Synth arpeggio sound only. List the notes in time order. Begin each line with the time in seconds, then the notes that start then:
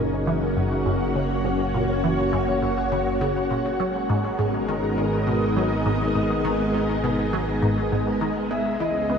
0.27 E3
0.57 F#2
0.86 F#2
1.15 C#3
1.45 C#3
1.74 A#2
2.04 E3
2.33 F#2
2.62 F#2
2.92 C#3
3.21 C#3
3.51 A#2
3.80 F#3
4.09 G#2
4.39 G#2
4.68 D#3
4.98 D#3
5.27 B2
5.57 F#3
5.86 G#2
6.15 G#2
6.45 D#3
6.74 D#3
7.04 B2
7.33 F#3
7.62 G#2
7.92 G#2
8.21 D#3
8.51 G#3
8.80 E3
9.10 B3